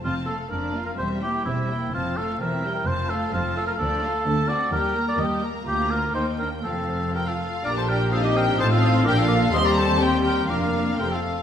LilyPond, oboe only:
\new Staff \with { instrumentName = "Oboe" } { \time 2/4 \key f \major \tempo 4 = 127 f'8 a'8 bes'8. bes'16 | c''8 g'8 e'4 | f'8 a'8 bes'8. bes'16 | c''8 a'8 f'8 a'16 bes'16 |
\key bes \major a'4. d''8 | bes'8. d''16 ees''8 r8 | g'8 bes'8 c''8 bes'8 | a'4 bes'16 a'8. |
d''16 c''16 bes'8 a'16 g'16 bes'8 | c''16 a'8. bes'16 a'8. | ees''16 d''16 c''8 c''8 bes'8 | bes'4 bes'16 a'8. | }